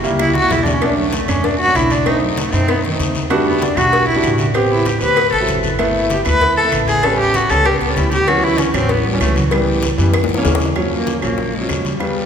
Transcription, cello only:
0, 0, Header, 1, 2, 480
1, 0, Start_track
1, 0, Key_signature, 2, "minor"
1, 0, Tempo, 310720
1, 1268, Time_signature, 4, 2, 24, 8
1, 18933, End_track
2, 0, Start_track
2, 0, Title_t, "Cello"
2, 0, Program_c, 0, 42
2, 315, Note_on_c, 0, 64, 108
2, 534, Note_off_c, 0, 64, 0
2, 566, Note_on_c, 0, 66, 117
2, 801, Note_on_c, 0, 64, 109
2, 824, Note_off_c, 0, 66, 0
2, 972, Note_on_c, 0, 62, 84
2, 995, Note_off_c, 0, 64, 0
2, 1128, Note_on_c, 0, 61, 89
2, 1151, Note_off_c, 0, 62, 0
2, 1283, Note_on_c, 0, 62, 94
2, 1306, Note_off_c, 0, 61, 0
2, 1501, Note_off_c, 0, 62, 0
2, 1510, Note_on_c, 0, 54, 77
2, 1747, Note_on_c, 0, 57, 84
2, 1770, Note_off_c, 0, 54, 0
2, 1990, Note_on_c, 0, 61, 91
2, 2013, Note_off_c, 0, 57, 0
2, 2237, Note_on_c, 0, 62, 93
2, 2260, Note_off_c, 0, 61, 0
2, 2468, Note_off_c, 0, 62, 0
2, 2477, Note_on_c, 0, 66, 115
2, 2714, Note_on_c, 0, 64, 100
2, 2737, Note_off_c, 0, 66, 0
2, 2951, Note_on_c, 0, 62, 93
2, 2975, Note_off_c, 0, 64, 0
2, 3202, Note_on_c, 0, 63, 101
2, 3226, Note_off_c, 0, 62, 0
2, 3433, Note_off_c, 0, 63, 0
2, 3443, Note_on_c, 0, 54, 78
2, 3685, Note_on_c, 0, 57, 91
2, 3709, Note_off_c, 0, 54, 0
2, 3919, Note_on_c, 0, 60, 104
2, 3942, Note_off_c, 0, 57, 0
2, 4163, Note_on_c, 0, 59, 92
2, 4186, Note_off_c, 0, 60, 0
2, 4393, Note_off_c, 0, 59, 0
2, 4402, Note_on_c, 0, 51, 88
2, 4543, Note_off_c, 0, 51, 0
2, 5359, Note_on_c, 0, 59, 92
2, 5605, Note_on_c, 0, 62, 98
2, 5628, Note_off_c, 0, 59, 0
2, 5842, Note_on_c, 0, 66, 123
2, 5865, Note_off_c, 0, 62, 0
2, 6298, Note_off_c, 0, 66, 0
2, 6307, Note_on_c, 0, 64, 97
2, 6532, Note_off_c, 0, 64, 0
2, 7275, Note_on_c, 0, 64, 91
2, 7510, Note_on_c, 0, 67, 86
2, 7533, Note_off_c, 0, 64, 0
2, 7738, Note_off_c, 0, 67, 0
2, 7747, Note_on_c, 0, 71, 117
2, 8195, Note_off_c, 0, 71, 0
2, 8235, Note_on_c, 0, 69, 93
2, 8456, Note_off_c, 0, 69, 0
2, 9201, Note_on_c, 0, 64, 58
2, 9438, Note_on_c, 0, 67, 93
2, 9461, Note_off_c, 0, 64, 0
2, 9659, Note_off_c, 0, 67, 0
2, 9669, Note_on_c, 0, 71, 125
2, 10115, Note_off_c, 0, 71, 0
2, 10148, Note_on_c, 0, 69, 109
2, 10292, Note_off_c, 0, 69, 0
2, 10626, Note_on_c, 0, 68, 110
2, 10874, Note_on_c, 0, 69, 109
2, 10897, Note_off_c, 0, 68, 0
2, 11111, Note_off_c, 0, 69, 0
2, 11121, Note_on_c, 0, 67, 110
2, 11366, Note_on_c, 0, 66, 105
2, 11389, Note_off_c, 0, 67, 0
2, 11587, Note_on_c, 0, 69, 127
2, 11610, Note_off_c, 0, 66, 0
2, 11830, Note_on_c, 0, 67, 106
2, 11853, Note_off_c, 0, 69, 0
2, 12068, Note_off_c, 0, 67, 0
2, 12080, Note_on_c, 0, 59, 59
2, 12313, Note_on_c, 0, 64, 104
2, 12336, Note_off_c, 0, 59, 0
2, 12549, Note_off_c, 0, 64, 0
2, 12556, Note_on_c, 0, 67, 111
2, 12786, Note_on_c, 0, 66, 98
2, 12809, Note_off_c, 0, 67, 0
2, 13032, Note_on_c, 0, 64, 109
2, 13056, Note_off_c, 0, 66, 0
2, 13274, Note_on_c, 0, 61, 93
2, 13297, Note_off_c, 0, 64, 0
2, 13501, Note_off_c, 0, 61, 0
2, 13510, Note_on_c, 0, 60, 100
2, 13762, Note_on_c, 0, 59, 91
2, 13785, Note_off_c, 0, 60, 0
2, 13987, Note_on_c, 0, 55, 102
2, 14010, Note_off_c, 0, 59, 0
2, 14237, Note_on_c, 0, 57, 103
2, 14260, Note_off_c, 0, 55, 0
2, 14473, Note_on_c, 0, 54, 95
2, 14496, Note_off_c, 0, 57, 0
2, 14702, Note_on_c, 0, 55, 93
2, 14725, Note_off_c, 0, 54, 0
2, 15422, Note_off_c, 0, 55, 0
2, 16631, Note_on_c, 0, 54, 81
2, 16925, Note_off_c, 0, 54, 0
2, 16941, Note_on_c, 0, 58, 92
2, 17314, Note_off_c, 0, 58, 0
2, 17355, Note_on_c, 0, 58, 84
2, 17838, Note_on_c, 0, 56, 80
2, 17861, Note_off_c, 0, 58, 0
2, 18311, Note_on_c, 0, 55, 91
2, 18334, Note_off_c, 0, 56, 0
2, 18933, Note_off_c, 0, 55, 0
2, 18933, End_track
0, 0, End_of_file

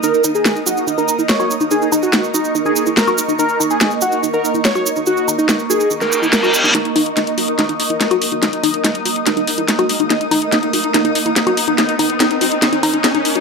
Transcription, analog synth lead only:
0, 0, Header, 1, 2, 480
1, 0, Start_track
1, 0, Tempo, 419580
1, 39, Time_signature, 4, 2, 24, 8
1, 15333, End_track
2, 0, Start_track
2, 0, Title_t, "Analog synth lead"
2, 0, Program_c, 0, 81
2, 39, Note_on_c, 0, 70, 101
2, 256, Note_off_c, 0, 70, 0
2, 399, Note_on_c, 0, 68, 89
2, 616, Note_off_c, 0, 68, 0
2, 760, Note_on_c, 0, 66, 95
2, 977, Note_off_c, 0, 66, 0
2, 1119, Note_on_c, 0, 70, 92
2, 1336, Note_off_c, 0, 70, 0
2, 1478, Note_on_c, 0, 73, 97
2, 1768, Note_off_c, 0, 73, 0
2, 1959, Note_on_c, 0, 68, 105
2, 2176, Note_off_c, 0, 68, 0
2, 2319, Note_on_c, 0, 66, 93
2, 2536, Note_off_c, 0, 66, 0
2, 2679, Note_on_c, 0, 63, 96
2, 2896, Note_off_c, 0, 63, 0
2, 3040, Note_on_c, 0, 68, 93
2, 3257, Note_off_c, 0, 68, 0
2, 3399, Note_on_c, 0, 70, 98
2, 3689, Note_off_c, 0, 70, 0
2, 3879, Note_on_c, 0, 70, 102
2, 4096, Note_off_c, 0, 70, 0
2, 4239, Note_on_c, 0, 68, 94
2, 4456, Note_off_c, 0, 68, 0
2, 4599, Note_on_c, 0, 66, 97
2, 4816, Note_off_c, 0, 66, 0
2, 4959, Note_on_c, 0, 70, 94
2, 5176, Note_off_c, 0, 70, 0
2, 5319, Note_on_c, 0, 73, 97
2, 5609, Note_off_c, 0, 73, 0
2, 5799, Note_on_c, 0, 66, 105
2, 6016, Note_off_c, 0, 66, 0
2, 6159, Note_on_c, 0, 63, 97
2, 6376, Note_off_c, 0, 63, 0
2, 6519, Note_on_c, 0, 68, 96
2, 6736, Note_off_c, 0, 68, 0
2, 6879, Note_on_c, 0, 70, 93
2, 7096, Note_off_c, 0, 70, 0
2, 7238, Note_on_c, 0, 70, 97
2, 7528, Note_off_c, 0, 70, 0
2, 15333, End_track
0, 0, End_of_file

